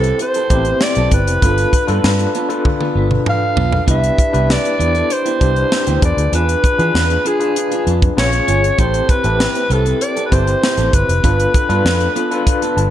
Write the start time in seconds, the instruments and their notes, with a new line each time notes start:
Already playing: fingered electric bass C2, tine electric piano C4 E4 G4 B4 C5, alto saxophone A4
0.04 clean electric guitar C4 G4 B4, closed hi-hat
0.19 alto saxophone C5, muted clean electric guitar stroke, closed hi-hat
0.34 clean electric guitar C4 G4 A4, closed hi-hat
0.50 fingered electric bass A1, tine electric piano B3 E4 G4 C5, clean electric guitar C4 G4 A4, kick, closed hi-hat
0.56 tine electric piano C4
0.65 closed hi-hat
0.81 alto saxophone D5, muted clean electric guitar stroke, snare
0.95 fingered electric bass B1, clean electric guitar C4 G4 A4, closed hi-hat
1.11 fingered electric bass G1, alto saxophone B4, muted clean electric guitar stroke, kick, closed hi-hat
1.27 fingered electric bass F1, muted clean electric guitar stroke, closed hi-hat
1.41 fingered electric bass G1, clean electric guitar B3 F4 A4, tine electric piano D4 F4 A4 B4, kick, closed hi-hat
1.58 closed hi-hat
1.73 muted clean electric guitar stroke, kick, closed hi-hat
1.87 fingered electric bass G2, clean electric guitar B3 F4 A4, tine electric piano D4 F4 A4 B4, closed hi-hat
2.04 fingered electric bass G2, snare
2.19 muted clean electric guitar stroke, closed hi-hat
2.35 clean electric guitar B3 F4 A4, closed hi-hat
2.48 clean electric guitar B3 F4 B4, tine electric piano D4 F4 A4 B4, closed hi-hat
2.65 muted clean electric guitar stroke, kick, high tom
2.81 clean electric guitar B3 F4 A4, high tom
2.95 fingered electric bass G1, clean electric guitar B3 F4 B4
3.11 muted clean electric guitar stroke, mid tom
3.26 alto saxophone F5, muted clean electric guitar stroke, mid tom
3.42 muted clean electric guitar stroke
3.57 fingered electric bass B1, clean electric guitar B3 F4 A4, floor tom
3.72 muted clean electric guitar stroke, floor tom
3.86 fingered electric bass C2, clean electric guitar B3 E4 G4, tine electric piano D4 E4 G4 B4, kick, closed hi-hat
3.91 alto saxophone E5
4.04 closed hi-hat
4.18 muted clean electric guitar stroke, kick, closed hi-hat
4.32 fingered electric bass C2, clean electric guitar B3 E4 G4, tine electric piano D4 E4 G4 B4, closed hi-hat
4.48 alto saxophone D5, muted clean electric guitar stroke, snare
4.64 muted clean electric guitar stroke, closed hi-hat
4.79 fingered electric bass E2, clean electric guitar B3 E4 G4, closed hi-hat
4.95 clean electric guitar B3 E4 A4, closed hi-hat
5.10 alto saxophone C5, muted clean electric guitar stroke, closed hi-hat
5.25 clean electric guitar B3 E4 G4, closed hi-hat
5.40 fingered electric bass C2, clean electric guitar B3 E4 G4, tine electric piano D4 E4 G4 C5, kick, closed hi-hat
5.56 closed hi-hat
5.72 muted clean electric guitar stroke, snare
5.87 fingered electric bass D2, clean electric guitar B3 E4 G4, closed hi-hat
6.02 fingered electric bass E2, tine electric piano D4 F4 G#4 B4, alto saxophone D5, kick, closed hi-hat
6.17 fingered electric bass D2, muted clean electric guitar stroke, closed hi-hat
6.32 fingered electric bass E2, clean electric guitar D4 F4 G#4, alto saxophone B4, closed hi-hat
6.49 closed hi-hat
6.63 muted clean electric guitar stroke, kick, closed hi-hat
6.78 fingered electric bass E3, tine electric piano D4 F4 G#4 B4, clean electric guitar D4 F4 G#4, closed hi-hat
6.94 fingered electric bass E2, snare
7.10 muted clean electric guitar stroke, closed hi-hat
7.25 clean electric guitar D4 F4 G#4, alto saxophone G#4, closed hi-hat
7.39 tine electric piano D4 F4 G#4 B4, clean electric guitar D4 F4 B4, closed hi-hat
7.56 muted clean electric guitar stroke, closed hi-hat
7.71 clean electric guitar D4 F4 G#4, closed hi-hat
7.87 fingered electric bass F2, clean electric guitar D4 F4 B4, closed hi-hat
8.02 muted clean electric guitar stroke, kick, closed hi-hat
8.16 fingered electric bass A#1, tine electric piano C#4 F4 G#4 B4, alto saxophone C#5, muted clean electric guitar stroke, snare
8.24 tine electric piano C#5
8.33 muted clean electric guitar stroke, closed hi-hat
8.47 fingered electric bass G1, clean electric guitar C#4 F4 G#4, closed hi-hat
8.63 muted clean electric guitar stroke, closed hi-hat
8.78 fingered electric bass A1, tine electric piano C4 E4 G4 C5, clean electric guitar C4 G4 A4, alto saxophone C5, kick, closed hi-hat
8.94 closed hi-hat
9.09 alto saxophone B4, muted clean electric guitar stroke, kick, closed hi-hat
9.23 fingered electric bass A1, tine electric piano C4 E4 G4 B4, clean electric guitar C4 G4 A4, closed hi-hat
9.40 muted clean electric guitar stroke, snare
9.54 muted clean electric guitar stroke, closed hi-hat
9.69 fingered electric bass C2, clean electric guitar C4 G4 A4, alto saxophone A4, closed hi-hat
9.85 clean electric guitar C4 G4 B4, closed hi-hat
10.01 alto saxophone D5, muted clean electric guitar stroke, closed hi-hat
10.16 clean electric guitar C4 G4 A4, closed hi-hat
10.26 alto saxophone B4
10.31 fingered electric bass G1, clean electric guitar C4 G4 A4, tine electric piano C4 E4 G4 C5, alto saxophone C5, kick, closed hi-hat
10.46 muted clean electric guitar stroke, closed hi-hat
10.62 muted clean electric guitar stroke, snare
10.77 fingered electric bass A1, clean electric guitar C4 G4 A4, closed hi-hat
10.93 fingered electric bass G1, alto saxophone B4, muted clean electric guitar stroke, kick, closed hi-hat
11.08 fingered electric bass F1, muted clean electric guitar stroke, closed hi-hat
11.23 fingered electric bass G1, clean electric guitar B3 F4 A4, tine electric piano D4 F4 A4 B4, kick, closed hi-hat
11.40 closed hi-hat
11.54 kick, closed hi-hat
11.69 fingered electric bass G2, clean electric guitar B3 F4 A4, tine electric piano D4 F4 A4 B4, closed hi-hat
11.85 fingered electric bass F2, snare
12.00 muted clean electric guitar stroke, closed hi-hat
12.16 clean electric guitar B3 F4 A4, closed hi-hat
12.31 clean electric guitar B3 F4 B4, tine electric piano D4 F4 A4 B4, closed hi-hat
12.47 muted clean electric guitar stroke, kick, closed hi-hat
12.62 clean electric guitar B3 F4 A4, closed hi-hat
12.77 fingered electric bass G1, tine electric piano A5, muted clean electric guitar stroke, closed hi-hat